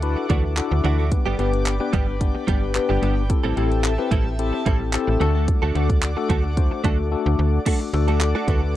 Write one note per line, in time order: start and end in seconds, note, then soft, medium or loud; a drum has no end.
0.00 0.16 D2 loud
0.00 0.26 D4 medium
0.00 0.26 E4 medium
0.00 0.26 F#4 medium
0.00 1.09 A4 medium
0.00 0.26 B4 medium
0.00 1.08 E5 medium
0.00 1.10 F#5 medium
0.00 3.26 D6 medium
0.00 closed hi-hat medium
0.17 muted clean electric guitar stroke soft
0.29 0.61 D2 loud
0.29 0.46 E3 medium
0.29 0.44 A3 medium
0.29 0.53 D4 medium
0.29 0.43 D4 medium
0.29 0.53 E4 medium
0.29 0.53 F#4 medium
0.29 0.43 F#4 medium
0.29 0.53 B4 medium
0.29 kick loud
0.29 closed hi-hat medium
0.44 muted clean electric guitar stroke medium
0.57 1.03 D4 medium
0.57 1.04 E4 medium
0.57 1.04 F#4 medium
0.57 1.04 A4 medium
0.57 muted clean electric guitar stroke soft
0.57 clap loud
0.57 closed hi-hat medium
0.71 0.81 D2 medium
0.71 muted clean electric guitar stroke soft
0.84 1.16 D2 medium
0.84 0.99 E3 medium
0.84 0.98 A3 loud
0.84 0.98 D4 medium
0.84 0.97 F#4 loud
0.84 closed hi-hat medium
0.98 1.11 E3 medium
0.98 1.11 A3 medium
0.98 1.10 D4 medium
0.98 1.10 F#4 medium
1.11 1.35 B3 medium
1.11 1.35 D4 medium
1.11 1.35 G4 medium
1.11 3.28 B4 medium
1.11 1.35 B4 medium
1.11 3.28 D5 medium
1.11 5.17 G5 medium
1.11 muted clean electric guitar stroke soft
1.11 kick loud
1.11 closed hi-hat medium
1.26 1.36 G1 medium
1.26 1.37 G3 medium
1.26 1.38 B3 medium
1.26 1.38 D4 medium
1.26 1.39 G4 medium
1.38 1.80 G1 medium
1.38 1.52 G3 medium
1.38 1.74 B3 medium
1.38 1.52 B3 medium
1.38 1.74 D4 medium
1.38 1.52 D4 medium
1.38 1.74 G4 medium
1.38 1.52 G4 medium
1.38 1.74 B4 medium
1.38 closed hi-hat medium
1.53 muted clean electric guitar stroke soft
1.53 closed hi-hat medium
1.66 clap loud
1.66 closed hi-hat medium
1.80 2.15 B3 medium
1.80 2.15 D4 medium
1.80 2.15 G4 medium
1.80 2.15 B4 medium
1.80 muted clean electric guitar stroke soft
1.93 2.34 G1 loud
1.93 2.10 G3 medium
1.93 2.07 B3 medium
1.93 2.07 D4 medium
1.93 2.06 G4 loud
1.93 kick medium
1.93 closed hi-hat medium
2.07 muted clean electric guitar stroke soft
2.21 2.44 B3 medium
2.21 2.44 D4 medium
2.21 2.44 G4 medium
2.21 2.44 D5 medium
2.21 kick loud
2.21 closed hi-hat medium
2.35 muted clean electric guitar stroke soft
2.47 2.79 G1 loud
2.47 2.64 G3 medium
2.47 2.71 B3 medium
2.47 2.62 B3 medium
2.47 2.71 D4 medium
2.47 2.61 D4 medium
2.47 2.71 G4 medium
2.47 2.61 G4 medium
2.47 2.71 B4 medium
2.47 kick loud
2.47 closed hi-hat medium
2.62 muted clean electric guitar stroke soft
2.75 3.22 B3 medium
2.75 3.22 D4 medium
2.75 3.22 G4 medium
2.75 3.22 B4 medium
2.75 muted clean electric guitar stroke soft
2.75 clap loud
2.75 closed hi-hat medium
2.89 2.99 G1 medium
2.89 3.01 G3 medium
2.89 3.01 B3 medium
2.89 3.01 D4 medium
2.89 3.01 G4 medium
3.02 3.34 G1 medium
3.02 3.19 G3 medium
3.02 3.16 B3 medium
3.02 3.16 D4 medium
3.02 3.15 G4 medium
3.02 closed hi-hat medium
3.16 muted clean electric guitar stroke soft
3.29 3.53 C4 medium
3.29 3.53 E4 medium
3.29 3.53 G4 medium
3.29 7.62 A4 medium
3.29 3.53 A4 medium
3.29 5.19 E5 medium
3.29 5.19 A5 medium
3.29 muted clean electric guitar stroke soft
3.29 kick loud
3.29 closed hi-hat medium
3.44 3.54 A1 medium
3.44 3.55 G3 medium
3.44 3.56 C4 medium
3.44 3.56 E4 medium
3.44 3.57 A4 medium
3.57 3.98 A1 medium
3.57 3.70 G3 medium
3.57 3.92 C4 medium
3.57 3.70 C4 medium
3.57 3.92 E4 medium
3.57 3.70 E4 medium
3.57 3.92 G4 medium
3.57 3.92 A4 medium
3.57 3.70 A4 medium
3.57 closed hi-hat medium
3.71 muted clean electric guitar stroke soft
3.71 closed hi-hat medium
3.84 clap loud
3.84 closed hi-hat medium
3.98 4.33 C4 medium
3.98 4.33 E4 medium
3.98 4.33 G4 medium
3.98 4.33 B4 medium
3.98 muted clean electric guitar stroke soft
4.11 4.52 A1 loud
4.11 4.28 G3 medium
4.11 4.26 C4 medium
4.11 4.25 E4 medium
4.11 4.24 A4 medium
4.11 kick medium
4.11 closed hi-hat medium
4.26 muted clean electric guitar stroke medium
4.39 4.62 C4 medium
4.39 4.62 E4 medium
4.39 4.62 G4 medium
4.39 4.62 A4 medium
4.39 closed hi-hat medium
4.53 muted clean electric guitar stroke soft
4.66 4.98 A1 loud
4.66 4.82 G3 medium
4.66 4.89 C4 medium
4.66 4.80 C4 medium
4.66 4.90 E4 medium
4.66 4.80 E4 medium
4.66 4.90 G4 medium
4.66 4.90 A4 loud
4.66 4.79 A4 loud
4.66 kick loud
4.66 closed hi-hat medium
4.80 muted clean electric guitar stroke soft
4.93 5.21 C4 medium
4.93 5.21 E4 medium
4.93 5.21 G4 medium
4.93 5.20 A4 loud
4.93 muted clean electric guitar stroke soft
4.93 clap loud
4.93 closed hi-hat medium
5.07 5.18 A1 medium
5.07 muted clean electric guitar stroke soft
5.20 5.52 D2 medium
5.20 5.35 A3 medium
5.20 5.67 A3 loud
5.20 5.67 D4 medium
5.20 5.34 D4 medium
5.20 5.67 F#4 medium
5.20 5.34 F#4 medium
5.20 5.67 A4 loud
5.20 5.33 A4 medium
5.20 7.64 D5 medium
5.20 7.64 F#5 medium
5.20 7.64 D6 medium
5.20 closed hi-hat medium
5.35 5.46 A3 medium
5.35 5.47 D4 medium
5.35 5.47 F#4 medium
5.35 5.46 A4 medium
5.48 muted clean electric guitar stroke soft
5.48 kick loud
5.48 closed hi-hat loud
5.62 5.72 D2 medium
5.62 5.74 A3 medium
5.62 5.74 D4 medium
5.62 5.75 F#4 medium
5.62 5.75 A4 medium
5.75 6.16 D2 medium
5.75 5.88 A3 medium
5.75 6.10 A3 medium
5.75 6.10 D4 medium
5.75 5.88 D4 medium
5.75 6.10 F#4 medium
5.75 5.89 F#4 medium
5.75 6.10 A4 medium
5.75 5.88 A4 medium
5.75 closed hi-hat medium
5.89 muted clean electric guitar stroke soft
5.89 kick loud
5.89 closed hi-hat medium
6.02 clap loud
6.02 closed hi-hat medium
6.17 6.51 A3 medium
6.17 6.51 D4 medium
6.17 6.51 F#4 medium
6.17 6.51 A4 medium
6.17 muted clean electric guitar stroke medium
6.29 6.71 D2 loud
6.29 6.46 A3 medium
6.29 6.44 D4 medium
6.29 6.43 F#4 medium
6.29 6.43 A4 medium
6.29 kick medium
6.29 closed hi-hat medium
6.44 muted clean electric guitar stroke soft
6.57 6.80 A3 medium
6.57 6.80 D4 medium
6.57 6.80 F#4 medium
6.57 6.80 C5 loud
6.57 kick loud
6.57 closed hi-hat medium
6.71 muted clean electric guitar stroke soft
6.84 7.16 D2 loud
6.84 7.01 A3 medium
6.84 7.07 A3 medium
6.84 7.08 D4 medium
6.84 6.98 D4 loud
6.84 7.08 F#4 medium
6.84 6.98 F#4 loud
6.84 7.08 A4 loud
6.84 6.97 A4 medium
6.84 kick loud
6.84 closed hi-hat medium
6.99 muted clean electric guitar stroke soft
7.11 7.58 A3 medium
7.11 7.58 D4 medium
7.11 7.58 F#4 medium
7.11 7.58 A4 loud
7.26 7.36 D2 medium
7.39 7.59 D2 medium
7.66 7.82 A3 medium
7.66 7.89 A3 medium
7.66 7.89 D4 medium
7.66 7.80 D4 medium
7.66 7.90 F#4 medium
7.66 7.80 F#4 medium
7.66 8.76 A4 medium
7.66 7.90 A4 medium
7.66 7.79 A4 medium
7.66 8.76 D5 medium
7.66 8.76 F#5 medium
7.66 8.76 D6 medium
7.66 kick loud
7.66 closed hi-hat medium
7.66 crash medium
7.80 muted clean electric guitar stroke soft
7.93 8.34 D2 loud
7.93 8.40 A3 medium
7.93 8.40 D4 medium
7.93 8.40 F#4 medium
7.93 8.40 A4 medium
7.93 muted clean electric guitar stroke soft
7.93 closed hi-hat medium
8.08 8.19 A3 medium
8.08 8.20 D4 medium
8.08 8.20 F#4 medium
8.08 8.19 A4 medium
8.08 closed hi-hat medium
8.21 muted clean electric guitar stroke soft
8.21 clap loud
8.21 closed hi-hat medium
8.35 8.47 A3 medium
8.35 8.47 D4 medium
8.35 8.48 F#4 medium
8.35 8.48 A4 medium
8.48 8.76 D2 medium
8.48 8.61 A3 medium
8.48 8.76 A3 medium
8.48 8.76 D4 medium
8.48 8.61 D4 medium
8.48 8.76 F#4 medium
8.48 8.62 F#4 medium
8.48 8.61 A4 medium
8.48 8.76 B4 medium
8.48 kick loud
8.48 closed hi-hat medium
8.62 muted clean electric guitar stroke medium